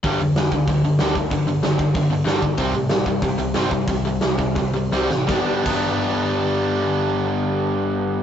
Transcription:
<<
  \new Staff \with { instrumentName = "Overdriven electric guitar" } { \clef bass \time 4/4 \key g \major \tempo 4 = 179 <g, d g>8 <g, d>8 <g, d>8 <g, d>8 <g, d>8 <g, d>8 <g, d g>8 <g, d>8 | <g, d>8 <g, d>8 <g, d>8 <g, d>8 <g, d>8 <g, d>8 <g, d g>8 <g, d>8 | <c g c'>8 <c g>8 <c g>8 <c g>8 <c g>8 <c g>8 <c g c'>8 <c g>8 | <c g>8 <c g>8 <c g>8 <c g>8 <c g>8 <c g>8 <c g c'>8 <c g>8 |
<g b d' g'>8 r8 <g b d' g'>2.~ | <g b d' g'>1 | }
  \new Staff \with { instrumentName = "Overdriven electric guitar" } { \clef bass \time 4/4 \key g \major <g, d g>8 <g, d>8 <g, d>8 <g, d>8 <g, d>8 <g, d>8 <g, d g>8 <g, d>8 | <g, d>8 <g, d>8 <g, d>8 <g, d>8 <g, d>8 <g, d>8 <g, d g>8 <g, d>8 | <c g c'>8 <c g>8 <c g>8 <c g>8 <c g>8 <c g>8 <c g c'>8 <c g>8 | <c g>8 <c g>8 <c g>8 <c g>8 <c g>8 <c g>8 <c g c'>8 <c g>8 |
<g, d g b d'>8 r8 <g, d g b d'>2.~ | <g, d g b d'>1 | }
  \new Staff \with { instrumentName = "Picked electric bass" } { \clef bass \time 4/4 \key g \major g,,8 f,8 f,,8 d,8 d,8 g,,8 d,8 d,8 | g,,8 g,,8 g,,8 g,,8 g,,4 g,,8 g,,8 | c,8 a,8 a,,8 g,8 g,8 c,8 g,,8 g,8 | c,8 c,8 c,8 c,8 c,4 c,8 a,,8 |
g,,8 r8 g,,2.~ | g,,1 | }
  \new DrumStaff \with { instrumentName = "Drums" } \drummode { \time 4/4 <hho bd>8 hho8 <hho sn>8 <hho bd>8 <hho bd>8 hho8 <hho sn>8 <hho bd>8 | <hho bd>8 hho8 <hho sn>8 <hho bd>8 <hho bd>8 hho8 <hho sn>8 <hho bd>8 | <hho bd>8 hho8 <hho sn>8 <hho bd>8 <hho bd>8 hho8 <hho sn>8 <hho bd>8 | <hho bd>8 hho8 <hho sn>8 <hho bd>8 <hho bd>8 hho8 sn8 sn8 |
<bd sn>4 <cymc bd>4 r4 r4 | r4 r4 r4 r4 | }
>>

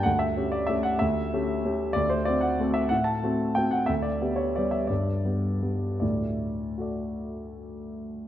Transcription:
<<
  \new Staff \with { instrumentName = "Grand piano" } { \time 3/4 \key d \major \tempo 4 = 182 << { fis''8 e''4 d''8 e''8 fis''8 | e''2~ e''8 r8 | d''8 c''8 d''8 fis''4 e''8 | fis''8 a''4. g''8 fis''8 |
e''8 d''4 cis''8 d''8 e''8 | d''2~ d''8 r8 | d''2.~ | d''2. | } \\ { r2. | r2. | r2. | r2. |
r2. | r2. | r2 <fis' a' d''>4~ | <fis' a' d''>2. | } >> }
  \new Staff \with { instrumentName = "Grand piano" } { \time 3/4 \key d \major d,4 <cis' g'>4 <a cis' g'>4 | d,4 <a cis' g'>4 <a cis' g'>4 | d,4 <c' fis'>4 <a c' fis'>4 | a,4 <a c' fis'>4 <a c' fis'>4 |
d,4 <b g'>4 <g b g'>4 | g,4 <g b g'>4 <g b g'>4 | <d, a,>2.~ | <d, a,>2. | }
>>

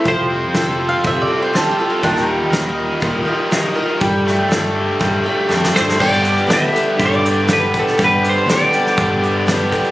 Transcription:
<<
  \new Staff \with { instrumentName = "Clean electric guitar" } { \time 4/4 \key g \mixolydian \tempo 4 = 121 c''4. r2 r8 | r1 | r2. r8 c''8 | d''4 e''4 d''4 b'8 a'8 |
b'8 c''8 d''2~ d''8 r8 | }
  \new Staff \with { instrumentName = "Mandolin" } { \time 4/4 \key g \mixolydian r4 \tuplet 3/2 { r4 f''8 e''8 d''8 c''8 a'8 g'8 f'8 } | \tuplet 3/2 { d'8 ees'4~ } ees'2~ ees'8 r8 | r1 | r1 |
r1 | }
  \new Staff \with { instrumentName = "Twelve-string acoustic guitar" } { \time 4/4 \key g \mixolydian <f g c' f' a'>4 <g c' f' a'>4 <g c' f' a'>8 <c' f' a'>8 <g c' f' a'>8 <c' f' a'>8 | <ees g ees' f' bes'>4 <g ees' f' bes'>4 <g ees' f' bes'>8 <ees' f' bes'>8 <g ees' f' bes'>8 <ees' f' bes'>8 | <g d' g' a'>4 <g d' g' a'>4 <g d' g' a'>8 <d' g' a'>8 <g d' g' a'>8 <d' g' a'>8 | <g b d' g' a'>4 <b d' g' a'>8 <d' g' a'>4. <b d' g' a'>8 <d' g' a'>8 |
<g b d' g' a'>4 <b d' g' a'>8 <d' g' a'>4. <b d' g' a'>8 <d' g' a'>8 | }
  \new Staff \with { instrumentName = "Overdriven electric guitar" } { \time 4/4 \key g \mixolydian f8 c'8 a'8 f'8 g8 c'8 f'8 a'8 | ees8 g8 bes'8 ees'8 f8 g8 ees'8 bes'8 | g8 a8 a'8 d'8 g8 a8 d'8 a'8 | <g, d g b d' g'>8 <g b d' g'>8 <g b d' g'>8 <g b d' g'>8 <g, d g b d' g'>8 <g b d' g'>8 <g b d' g'>4 |
<g, d g b d' g'>8 <g b d' g'>8 <g b d' g'>8 <g b d' g'>8 <g, d g b d' g'>8 <g b d' g'>8 <g b d' g'>4 | }
  \new Staff \with { instrumentName = "Fingered electric bass" } { \clef bass \time 4/4 \key g \mixolydian f,,4 f,,4 f,,8 r4. | ees,4 ees,4 ees,8 r4. | g,4 g,4 g,8 r8 f,8 g,8 | g,4 d,8 r8 g,2 |
g,4 d,8 r8 g,2 | }
  \new DrumStaff \with { instrumentName = "Drums" } \drummode { \time 4/4 <hh bd>4 <hh sn>4 <hh bd>4 <hh sn>4 | <hh bd>16 sn8. <hh sn>4 <hh bd>4 <hh sn>4 | <hh bd>8 sn8 <hh sn>4 <hh bd>4 sn16 sn16 sn16 sn16 | <cymc bd>16 hh16 hh16 hh16 <hh sn>8 hh8 <hh bd>16 hh16 hh8 <hh sn>8 <hh bd>16 sn16 |
<hh bd>8 hh16 hh16 <hh sn>8 hh16 sn16 <hh bd>8 hh8 <hh sn>8 <hh bd>16 hh16 | }
>>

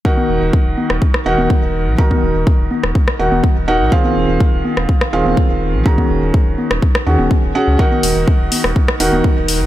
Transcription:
<<
  \new Staff \with { instrumentName = "Felt piano" } { \time 4/4 \key ees \dorian \tempo 4 = 124 <ees ees' ges' bes' ges''>2~ <ees ees' ges' bes' ges''>8 <ees ees' ges' bes' ges''>4. | <ees ees' ges' bes' bes''>2~ <ees ees' ges' bes' bes''>8 <ees ees' ges' bes' ges''>4 <ees' ges' bes' ges''>8 | <ees c' f' aes' f''>2~ <ees c' f' aes' f''>8 <ees c' f' aes' f''>4. | <ees des' ges' aes' bes''>2~ <ees des' ges' aes' bes''>8 <ees des' ges' aes' ges''>4 <des' ges' aes' ges''>8 |
<ees ees' ges' bes' ges''>2~ <ees ees' ges' bes' ges''>8 <ees ees' ges' bes' ges''>4. | }
  \new Staff \with { instrumentName = "Sub bass" } { \clef bass \time 4/4 \key ees \dorian r8 ees,,16 ees,,16 r16 ees,,16 r16 ees,,16 r8 ees,,16 ees,,16 r16 ees,,8 bes,,16 | r8 ees,,16 ees,,16 r16 ees,,16 r16 ees,,16 r8 ees,,16 ees,,16 r16 ees,,8 bes,,16 | r8 ees,,16 ees,,16 r16 ees,,16 r16 ees,,16 r8 ees,,16 ees,,16 r16 ees,,8 bes,,16 | r8 ees,,16 ees,,16 r16 ees,,16 r16 ees,,16 r8 ees,16 ees,,16 r16 ees,,16 r16 des,16 |
r8 ees,,16 ees,,16 r16 ees,,16 r16 ees,,16 r8 ees,,16 ees,,16 r16 ees,,8 bes,,16 | }
  \new DrumStaff \with { instrumentName = "Drums" } \drummode { \time 4/4 bd16 cgho8. bd8 cgho16 ss16 bd16 ss8 cgho16 bd4 | bd16 <cgho bd>8. bd8 cgho16 ss16 bd16 ss8 cgho16 bd4 | bd16 cgho8. bd8 cgho16 ss16 bd16 ss8 cgho16 bd4 | bd16 <cgho bd>8. bd8 cgho16 ss16 bd16 ss8 cgho16 bd4 |
bd16 cgho16 hho8 bd8 <cgho hho>16 ss16 bd16 ss16 hho16 cgho16 bd8 hho8 | }
>>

